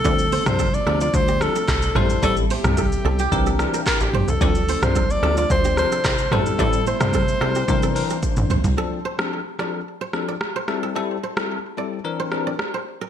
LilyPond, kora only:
\new Staff \with { instrumentName = "Kora" } { \time 4/4 \key d \minor \tempo 4 = 110 d''16 r16 c''16 r16 a'16 r16 a'16 f'16 r16 g'16 r16 a'16 r8 c''16 r16 | d''16 r16 c''16 r16 a'16 r16 a'16 g'16 r16 a'16 r16 bes'16 r8 c''16 r16 | d''16 r16 c''16 r16 a'16 r16 a'16 f'16 r16 g'16 r16 a'16 r8 c''16 r16 | d''16 r16 c''16 r16 a'16 r16 a'16 g'16 r16 a'16 r16 bes'16 r8 c''16 r16 |
a'16 r16 c''16 r8. d''16 r8 c''16 r16 d''16 r16 c''16 r16 a'16 | a'16 r16 c''16 r8. d''16 r8 c''16 r16 d''16 r16 c''16 r16 bes'16 | }